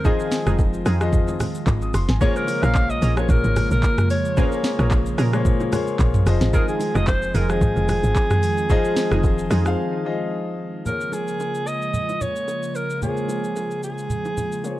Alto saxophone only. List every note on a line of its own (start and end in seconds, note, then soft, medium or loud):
0.05 0.59 G#4 medium
2.21 2.38 C#5 loud
2.36 2.65 A#4 medium
2.63 2.92 F5 loud
2.90 3.17 D#5 loud
3.17 3.31 C#5 loud
3.30 3.71 A#4 loud
3.71 4.08 A#4 medium
4.11 4.61 C#5 medium
6.54 6.68 A#4 loud
6.69 6.97 G#4 medium
6.96 7.07 D#5 loud
7.08 7.37 C5 loud
7.35 7.51 A#4 loud
7.50 10.32 G#4 loud
10.86 11.15 A#4 medium
11.13 11.69 G#4 medium
11.67 12.23 D#5 loud
12.22 12.77 C#5 loud
12.76 13.02 A#4 medium
13.03 13.79 G#4 medium
13.84 14.80 G#4 medium